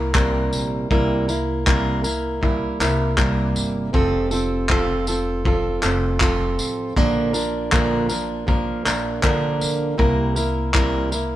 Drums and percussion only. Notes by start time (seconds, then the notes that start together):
0.15 kick, clap
0.53 tambourine
0.91 kick
1.29 tambourine
1.67 kick, clap
2.04 tambourine
2.43 kick
2.81 clap, tambourine
3.18 kick, clap
3.56 tambourine
3.94 kick
4.31 tambourine
4.69 kick, clap
5.07 tambourine
5.45 kick
5.82 clap, tambourine
6.20 kick, clap
6.59 tambourine
6.97 kick
7.34 tambourine
7.72 kick, clap
8.09 tambourine
8.48 kick
8.86 clap, tambourine
9.23 kick, clap
9.61 tambourine
9.99 kick
10.36 tambourine
10.74 kick, clap
11.12 tambourine